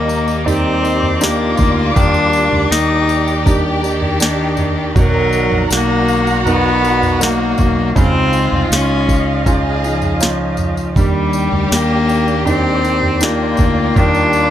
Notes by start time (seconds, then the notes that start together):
Already playing: D#2 D#3 G3 A#3 D#4 G4 A#4 D5 D6
0.09 tambourine
0.28 tambourine
0.45 G3 C4 D#4 G4 A#4 D5, floor tom, tambourine
0.82 D#4 A#4, tambourine
1.03 floor tom
1.20 A#3 D4 D#4 F4 G4, snare, tambourine
1.57 D2, kick, floor tom, tambourine
1.94 D#2 D#3 G3 D4, kick, floor tom, tambourine
1.99 A#4
2.14 tambourine
2.33 tambourine
2.53 D2, floor tom
2.71 D#2 D#4 G4, snare, tambourine
3.09 tambourine
3.28 tambourine
3.46 G3 D4 D#4 G4 A#4, kick, floor tom, tambourine
3.83 D#3 D4 D#4 A#4, tambourine
4.02 floor tom
4.20 D4 D#4 G4, snare, tambourine
4.57 floor tom, tambourine
4.94 B1 B2 D#3 F#3 A#4 F#5 A#5, kick, floor tom, tambourine
4.99 D#4 A#4
5.33 tambourine
5.52 A#1, floor tom
5.71 B1 A#3 F#4, snare, tambourine
6.08 tambourine
6.27 tambourine
6.45 F#3 B3 D#4 A#4, floor tom, tambourine
6.82 F#3 D#4 A#4, tambourine
7.03 floor tom, tambourine
7.20 F#3 A#3 D#4, snare, tambourine
7.58 B1, kick, floor tom, tambourine
7.95 C#2 C#3 G#3 C4 D#4 F4 D#5 F5, kick, floor tom, tambourine
7.99 F4 G#4
8.33 tambourine
8.52 C2, floor tom
8.70 C#2 C#4, snare, tambourine
9.09 kick, tambourine
9.45 G#3 C#4 D#4 F4 G#4, kick, floor tom, tambourine
9.83 F3 D#4 F4 G#4, tambourine
10.02 floor tom, tambourine
10.20 C#4 D#4 F4, snare, tambourine
10.57 floor tom, tambourine
10.77 tambourine
10.95 D#2 D#3 G3 D4 G4 D5 G5, kick, floor tom, tambourine
10.99 D#4 A#4
11.33 tambourine
11.52 D2, floor tom
11.72 D#2 A#3, snare, tambourine
12.09 tambourine
12.28 tambourine
12.45 G3 C4 D4 D#4 G4 A#4, floor tom, tambourine
12.83 D4 D#4 A#4, tambourine
13.02 floor tom
13.21 A#3 D4 D#4 F4 G4, snare, tambourine
13.57 D2, kick, floor tom, tambourine
13.95 D#2 D#3 G3 D4, kick, floor tom, tambourine
14.00 A#4
14.15 tambourine
14.33 tambourine